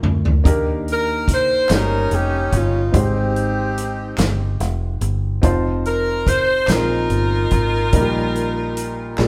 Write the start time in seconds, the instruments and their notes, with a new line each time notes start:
Already playing: upright piano A#3 D4 F4 G#4 A#4
0.03 fingered electric bass D2, mid tom
0.25 floor tom
0.44 fingered electric bass D#2, upright piano D#3 A#3 D4 D#4 G4 A#4, kick, closed hi-hat
0.88 saxophone section A#4, closed hi-hat
1.28 kick, closed hi-hat
1.33 saxophone section C5
1.68 fingered electric bass G1, upright piano G2 A#3 C#4 D#4 F#4 A#4, saxophone section C#4 D#4, snare, clap, closed hi-hat
1.73 saxophone section A#4
1.77 upright piano G4
2.11 fingered electric bass F1, saxophone section G4, closed hi-hat
2.52 fingered electric bass G1, saxophone section F4, kick, closed hi-hat
2.91 fingered electric bass G#1, upright piano G#2 G#3 C4 D#4 G4, kick, closed hi-hat
2.96 saxophone section C4 D#4 G4, upright piano C5
3.36 closed hi-hat
3.78 closed hi-hat
4.18 fingered electric bass G1, snare, clap, closed hi-hat
4.60 fingered electric bass F1, snare, closed hi-hat
5.01 fingered electric bass G1, closed hi-hat
5.42 fingered electric bass F1, upright piano C4 D#4 F4 C5 A5, kick, closed hi-hat
5.85 saxophone section A#4, closed hi-hat
6.27 saxophone section C5, kick, closed hi-hat
6.67 fingered electric bass A#1, upright piano A#2 C4 D4 F4 G#4 A#4, saxophone section D#4 F4 A#4, snare, clap, closed hi-hat
6.75 upright piano D#4
7.10 fingered electric bass G1, closed hi-hat
7.51 fingered electric bass G#1, kick, closed hi-hat
7.93 fingered electric bass A#1, upright piano A#2 G3 A#3 D#4 F4 A#4, kick, closed hi-hat
8.01 upright piano G4
8.35 closed hi-hat
8.77 closed hi-hat
9.18 fingered electric bass A#1, upright piano A#2 G#3 A#3 F4 G4 D5, snare, clap